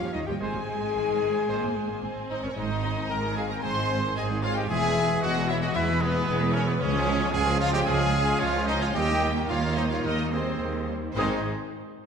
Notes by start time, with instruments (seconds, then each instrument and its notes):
Already playing: harp D#3 G3 C#4 A#4, cello section F3, viola section C#4, french horn section F4, violin section C#5 F5, flute F5
0.01 double bass section D#2, viola section G3
0.13 double bass section D#2, cello section D#3, viola section G3, french horn section D#4, clarinet D#4, flute D#5, violin section D#5
0.23 harp G#2, french horn section G4, flute G5
0.27 double bass section D#2, viola section F3, cello section G3, harp G#3, clarinet G4, violin section G5
0.32 harp C4
0.36 trombone section D#3, cello section G#3, harp G#4, french horn section G#4, flute G#5, violin section G#5
0.40 double bass section G#1, trombone section G#3, viola section G#3 C4, clarinet G#4, trumpet C5, violin section C5
0.54 double bass section G#1, viola section G3
0.67 double bass section G#1, viola section G#3
0.81 double bass section G#1, viola section G#3
0.94 double bass section G#1, viola section D#3
1.08 double bass section G#1
1.22 double bass section G#1
1.48 double bass section G#1, trombone section D#3 G#3, viola section A#3, trumpet C5
1.62 double bass section G#1
1.76 double bass section G#1, viola section G#3
1.88 double bass section G#1, viola section A#3
2.03 double bass section G#1, viola section C4
2.16 double bass section G#1
2.29 double bass section G#1, violin section D#4 D#5, trumpet D#4, flute C5
2.43 double bass section G#1, trumpet C#4, violin section C#4 C#5, flute A#4
2.56 double bass section G#1, harp G#2, cello section G#2, trombone section D#3 G#3, viola section G#3 C4, french horn section C4 G#4, trumpet D#4, violin section D#4 D#5, flute C5
2.70 viola section D#3 D#4, harp G#3
2.83 viola section G#3 C4, harp G#4
2.97 viola section D#3 D#4, harp C4
3.09 double bass section G#1, cello section G#2, viola section G#3 C4, trumpet A#4, violin section A#4 A#5, harp C5, flute G5
3.24 viola section D#3 D#4, harp G#5
3.36 viola section G#3 C4, violin section G#4 G#5, trumpet G#4, harp G#4, flute F5
3.50 viola section D#3 D#4, harp C4, trumpet A#4, violin section A#4 A#5, flute G5
3.63 double bass section G#1, cello section G#2, harp D#3, viola section G#3 C4, trumpet C5, violin section C5 C6, flute G#5
3.77 viola section D#3 D#4, harp G#3
3.90 viola section G#3 C4, harp G#4
4.04 viola section D#3 D#4, harp C4
4.16 double bass section G#1, cello section G#2, viola section G#3 C4, violin section G#4 G#5, trumpet G#4, harp C5, flute D#5
4.30 viola section D#3 D#4, harp G#5
4.42 viola section G#3 C4, trumpet F4, violin section F4 F5, harp G#4, flute C#5
4.56 viola section D#3 D#4, harp C4, trumpet G4, violin section G4 G5, flute D#5
4.68 double bass section E1, cello section E2, trombone section E3, harp E3, viola section G#3 B3, french horn section B3, trumpet G#4, violin section G#4 G#5, flute E5
4.83 viola section E3 G#3, harp E4
4.95 viola section G#3 B3, harp B4
5.09 viola section E3 G#3, harp E5
5.22 double bass section E1, cello section E2, viola section G#3 B3, trumpet F#4, violin section F#4 F#5, flute D#5, harp G#5
5.35 viola section E3 G#3, harp B5
5.48 viola section G#3 B3, trumpet E4, violin section E4 E5, flute C#5, harp E5
5.62 viola section E3 G#3, trumpet F#4, violin section F#4 F#5, harp B4, flute D#5
5.74 double bass section E1, cello section E2, viola section G#3 B3, harp B3, trumpet E4, violin section E4 E5, flute B4
5.88 viola section E3 G#3, harp E4
6.00 viola section G#3 B3, trumpet B3, violin section B3 B4, flute G#4, harp B4
6.14 viola section E3 G#3, harp E5
6.27 double bass section E1, cello section E2, viola section G#3 B3, harp G#5
6.40 viola section E3 G#3, harp B5
6.54 viola section G#3 B3, violin section C#4 C#5, trumpet C#4, flute A#4, harp E5
6.67 viola section E3 G#3, trumpet B3, violin section B3 B4, flute G#4, harp B4
6.78 cello section C#2, double bass section C#2, harp C#3, trombone section F3 G#3, viola section G#3 C#4, trumpet C#4, french horn section C#4 G#4, violin section C#4 C#5, flute G#4
6.93 viola section F3 F4, harp C#4
7.07 viola section G#3 C#4, harp G#4
7.20 viola section F3 F4, harp C#5
7.32 double bass section C#2, cello section C#2, viola section G#3 C#4, trumpet G#4, violin section G#4 G#5, flute F5, harp F5
7.46 viola section F3 F4, harp G#5
7.58 viola section G#3 C#4, trumpet F4, violin section F4 F5, flute C#5, harp C#5
7.72 viola section F3 F4, trumpet G4, violin section G4 G5, harp G#4, flute D#5
7.86 double bass section C#2, cello section C#2, harp G#3, viola section G#3 C#4, violin section G#4 G#5, trumpet G#4, flute F5
8.00 viola section F3 F4, harp C#4
8.14 viola section G#3 C#4, harp G#4
8.27 viola section F3 F4, harp C#5
8.39 double bass section C#2, cello section C#2, viola section G#3 C#4, trumpet F4, violin section F4 F5, flute C#5, harp F5
8.54 viola section F3 F4, harp G#5
8.66 viola section G#3 C#4, trumpet D#4, violin section D#4 D#5, flute C5, harp C#5
8.80 viola section F3 F4, trumpet F4, violin section F4 F5, harp G#4, flute C#5
8.94 double bass section D#2, cello section D#2, harp D#3, trombone section D#3 A#3, viola section G3 A#3, french horn section A#3 D#4, trumpet G4, violin section G4 G5, flute D#5
9.08 viola section D#3 G3, harp D#4
9.21 viola section G3 A#3, harp A#4
9.35 viola section D#3 G3, harp D#5
9.49 cello section D#2, double bass section D#2, viola section G3 A#3, violin section F4 F5, trumpet F4, harp A#4, flute C#5
9.62 viola section D#3 G3, harp A#5
9.76 viola section G3 A#3, violin section D#4 D#5, trumpet D#4, flute C5, harp D#5
9.90 viola section D#3 G3, trumpet F4, violin section F4 F5, harp A#4, flute C#5
10.04 double bass section D#2, cello section D#2, viola section G3 A#3, harp A#3, trumpet D#4, violin section D#4 D#5, flute A#4
10.18 viola section D#3 G3, harp D#4
10.31 viola section G3 A#3, violin section C4 C5, trumpet C4, flute G#4, harp A#4
10.45 viola section D#3 G3, harp D#5
10.59 double bass section D#2, cello section D#2, viola section G3 A#3, harp A#4
10.73 viola section D#3 G3, harp A#5
10.88 viola section G3 A#3, harp D#5
11.03 viola section D#3 G3, harp A#4
11.14 double bass section G#1, harp G#2 G#3 D#4, cello section G#2, viola section D#3 G#3, trombone section D#3 G#3, violin section C4 C5, french horn section C4 D#4, trumpet D#4, flute G#4
11.19 harp D#5